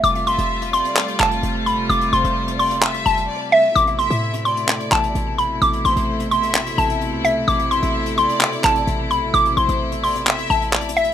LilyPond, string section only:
\new Staff \with { instrumentName = "String section" } { \clef bass \time 4/4 \key a \minor \tempo 4 = 129 <c g a f'>1~ | <c g a f'>1 | <b, c a e'>1~ | <b, c a e'>1~ |
<b, c a e'>1~ | <b, c a e'>1 | }